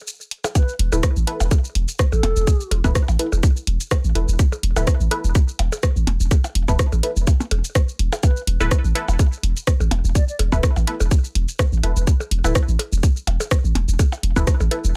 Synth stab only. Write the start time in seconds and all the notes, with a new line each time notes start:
0.92 E4 A4 B4
1.27 E4 A4 B4
2.84 E4 A4 B4
3.19 E4 A4 B4
4.15 E4 A4 B4
4.76 E4 A4 B4
5.11 E4 A4 B4
6.68 E4 A4 B4
7.03 E4 A4 B4
8.60 E4 A4 B4
8.95 E4 A4 B4
10.52 E4 A4 B4
10.87 E4 A4 B4
11.83 E4 A4 B4
12.44 E4 A4 B4
14.36 E4 A4 B4
14.71 E4 A4 B4